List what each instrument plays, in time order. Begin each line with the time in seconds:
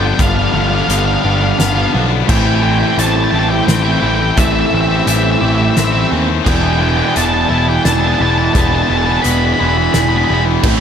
Already playing: picked electric bass G1, distorted electric guitar D3, clean electric guitar D3 F3 G3 B3 G4
0.00 distorted electric guitar G3 B3 D4
0.04 lead electric guitar G5, muted overdriven electric guitar stroke
0.14 distorted electric guitar G2, lead electric guitar G5
0.18 picked electric bass G1, clean electric guitar G2, overdriven electric guitar G2 D3, distorted electric guitar D3 G3 B3 D4, lead electric guitar F5, kick, closed hi-hat
0.22 overdriven electric guitar F3 B3 F4
0.28 lead electric guitar F5
0.36 lead electric guitar F5
0.45 lead electric guitar F5
0.52 picked electric bass G1, distorted electric guitar D3 G3 B3 D4, clean electric guitar D3, lead electric guitar F5
0.61 lead electric guitar F5
0.68 distorted electric guitar G3 B3 D4, overdriven electric guitar F4, lead electric guitar F5
0.74 overdriven electric guitar F3 B3, lead electric guitar F5
0.82 lead electric guitar F5
0.88 picked electric bass G1, distorted electric guitar G2 D3 G3 B3 D4, overdriven electric guitar G2 D3 F3 B3, clean electric guitar G3, lead electric guitar F5, closed hi-hat
0.92 overdriven electric guitar F4
0.99 lead electric guitar F5
1.05 lead electric guitar F5
1.14 lead electric guitar F5
1.22 picked electric bass G1, distorted electric guitar D3 G3 B3 D4, overdriven electric guitar D3 F3, clean electric guitar G4, lead electric guitar F5
1.27 overdriven electric guitar B3 F4, lead electric guitar F5
1.37 distorted electric guitar D4, lead electric guitar F5
1.42 distorted electric guitar G3 B3, lead electric guitar F5, muted overdriven electric guitar stroke
1.52 lead electric guitar F5
1.58 picked electric bass G1, clean electric guitar B3, lead electric guitar F5, snare, closed hi-hat
1.68 lead electric guitar F5
1.75 overdriven electric guitar F3 B3 F4, lead electric guitar F5
1.83 lead electric guitar F5
1.92 picked electric bass B1, overdriven electric guitar D3 F3 B3 F4, distorted electric guitar D3 G3 B3 D4, clean electric guitar F3
2.09 distorted electric guitar G3 B3 D4, muted overdriven electric guitar stroke
2.27 picked electric bass A1, distorted electric guitar A2 E3 A3 C4 E4, overdriven electric guitar A2 E3 A3 C4 E4, clean electric guitar A2, harmonium G4 C5 G5, lead electric guitar G5, kick, crash
2.38 lead electric guitar G5
2.47 lead electric guitar G5
2.55 lead electric guitar G5
2.62 distorted electric guitar E3 A3 C4 E4, clean electric guitar E3, lead electric guitar G5
2.70 lead electric guitar G5
2.79 distorted electric guitar A3 C4 E4, overdriven electric guitar C4 E4, lead electric guitar G5
2.83 overdriven electric guitar A3, lead electric guitar G5
2.96 picked electric bass A1, overdriven electric guitar A2 E3 A3 C4 E4, distorted electric guitar A2 E3 A3 C4 E4, clean electric guitar G3, lead electric guitar A5, closed hi-hat
3.07 lead electric guitar A5
3.15 lead electric guitar A5
3.24 lead electric guitar A5
3.31 picked electric bass A1, distorted electric guitar E3 A3 C4 E4, overdriven electric guitar E3 A3 C4, clean electric guitar G4, lead electric guitar A5
3.35 overdriven electric guitar E4
3.39 lead electric guitar A5
3.49 distorted electric guitar A3 C4 E4, lead electric guitar G5, muted overdriven electric guitar stroke
3.67 picked electric bass A1, clean electric guitar C4, lead electric guitar G5, snare, closed hi-hat
3.75 lead electric guitar G5
3.83 overdriven electric guitar C4 E4, lead electric guitar G5
3.87 overdriven electric guitar A3
3.92 lead electric guitar G5
4.00 picked electric bass A1, overdriven electric guitar E3 A3 C4 E4, distorted electric guitar E3 A3, clean electric guitar E3, lead electric guitar G5
4.04 distorted electric guitar C4 E4, lead electric guitar G5
4.15 lead electric guitar G5
4.19 distorted electric guitar A3 C4 E4, lead electric guitar G5, muted overdriven electric guitar stroke
4.31 lead electric guitar G5
4.35 picked electric bass A1, distorted electric guitar A2 E3 A3 C4 E4, clean electric guitar A2, overdriven electric guitar A2 E3 A3 C4, lead electric guitar E5, kick, closed hi-hat
4.40 overdriven electric guitar E4
4.45 lead electric guitar E5
4.52 lead electric guitar E5
4.61 lead electric guitar E5
4.66 lead electric guitar E5
4.72 picked electric bass A1, distorted electric guitar E3 A3 C4 E4, lead electric guitar E5
4.81 lead electric guitar E5
4.89 distorted electric guitar A3 C4 E4, overdriven electric guitar A3 C4 E4, lead electric guitar E5
4.97 lead electric guitar E5
5.06 picked electric bass A1, distorted electric guitar A2 E3 A3 C4 E4, overdriven electric guitar A2 E3 A3 C4 E4, clean electric guitar G3, lead electric guitar E5, closed hi-hat
5.16 lead electric guitar E5
5.23 lead electric guitar E5
5.32 lead electric guitar E5
5.39 picked electric bass A1, distorted electric guitar E3 A3 C4, overdriven electric guitar E3, clean electric guitar G4, lead electric guitar E5
5.43 overdriven electric guitar A3 C4 E4, distorted electric guitar E4, lead electric guitar E5
5.55 distorted electric guitar C4 E4, lead electric guitar E5
5.59 distorted electric guitar A3, lead electric guitar E5, muted overdriven electric guitar stroke
5.70 lead electric guitar E5
5.77 picked electric bass A1, clean electric guitar C4, lead electric guitar E5, snare, closed hi-hat
5.85 lead electric guitar E5
5.92 overdriven electric guitar A3 C4 E4, lead electric guitar E5
6.01 lead electric guitar E5
6.10 picked electric bass D#2, overdriven electric guitar E3 A3 C4 E4, distorted electric guitar E3 A3 C4 E4
6.27 distorted electric guitar A3 C4 E4, muted overdriven electric guitar stroke
6.45 picked electric bass E1, clean electric guitar E2, overdriven electric guitar E3 B3 D4 G#4, distorted electric guitar E3 G#3 B3 E4, harmonium E4 D5, lead electric guitar G5, kick, crash
6.56 lead electric guitar G5
6.64 lead electric guitar G5
6.73 lead electric guitar G5
6.79 clean electric guitar B2, distorted electric guitar E3 G#3 B3 E4, lead electric guitar G5
6.89 lead electric guitar G5
6.97 distorted electric guitar G#3 B3 E4, overdriven electric guitar B3 D4 G#4, lead electric guitar G5
7.04 lead electric guitar G5
7.15 picked electric bass E1, distorted electric guitar E3 G#3 B3 E4, overdriven electric guitar E3 B3 D4 G#4, lead electric guitar A5, closed hi-hat
7.25 lead electric guitar A5
7.33 lead electric guitar A5
7.41 lead electric guitar A5
7.49 picked electric bass E1, overdriven electric guitar E3 B3 D4 G#4, distorted electric guitar E3 G#3 B3 E4, clean electric guitar E4, lead electric guitar A5
7.58 lead electric guitar A5
7.67 distorted electric guitar G#3 B3 E4, lead electric guitar G5, muted overdriven electric guitar stroke
7.85 picked electric bass E1, clean electric guitar D4, lead electric guitar A5, snare, closed hi-hat
7.93 lead electric guitar A5
8.00 overdriven electric guitar D4 G#4, lead electric guitar A5
8.05 overdriven electric guitar B3, lead electric guitar A5
8.14 lead electric guitar A5
8.19 picked electric bass E1, overdriven electric guitar E3 B3 D4 G#4, clean electric guitar E3, distorted electric guitar E3 G#3 B3 E4, lead electric guitar A5
8.30 lead electric guitar A5
8.38 distorted electric guitar G#3 B3 E4, lead electric guitar A5, muted overdriven electric guitar stroke
8.45 lead electric guitar A5
8.53 picked electric bass E1, clean electric guitar E2, distorted electric guitar E3 G#3 B3 E4, overdriven electric guitar E3 B3 D4, lead electric guitar A5, kick, closed hi-hat
8.58 overdriven electric guitar G#4, lead electric guitar A5
8.68 lead electric guitar A5
8.75 lead electric guitar A5
8.82 lead electric guitar A5
8.89 picked electric bass E1, clean electric guitar B2, distorted electric guitar E3 G#3 B3 E4, lead electric guitar A5
8.97 lead electric guitar A5
9.06 distorted electric guitar G#3 B3 E4, overdriven electric guitar B3 D4 G#4, lead electric guitar A5
9.12 lead electric guitar A5
9.22 picked electric bass E1, overdriven electric guitar E3 B3 D4, distorted electric guitar E3 G#3 B3, lead electric guitar B5, closed hi-hat
9.26 distorted electric guitar E4, overdriven electric guitar G#4
9.31 lead electric guitar B5
9.38 lead electric guitar B5
9.45 lead electric guitar B5
9.54 lead electric guitar B5
9.58 picked electric bass E1, overdriven electric guitar E3 B3 D4 G#4, distorted electric guitar E3 G#3 B3, clean electric guitar E4, lead electric guitar B5
9.62 distorted electric guitar E4
9.68 lead electric guitar B5
9.76 distorted electric guitar G#3 B3 E4, lead electric guitar B5, muted overdriven electric guitar stroke
9.84 lead electric guitar B5
9.93 picked electric bass E1, clean electric guitar D4, lead electric guitar B5, snare, closed hi-hat
10.02 lead electric guitar B5
10.09 overdriven electric guitar B3 D4 G#4, lead electric guitar B5
10.17 lead electric guitar B5
10.25 overdriven electric guitar E3, clean electric guitar E3, lead electric guitar B5
10.29 picked electric bass E1, distorted electric guitar E3 G#3 B3 E4, overdriven electric guitar B3 D4 G#4
10.34 lead electric guitar B5
10.45 distorted electric guitar G#3 B3 E4, muted overdriven electric guitar stroke
10.61 picked electric bass A1, overdriven electric guitar A2 E3 A3 C4 E4, distorted electric guitar A2 E3 A3, clean electric guitar A2, harmonium G4 C5, kick, crash
10.66 distorted electric guitar C4 E4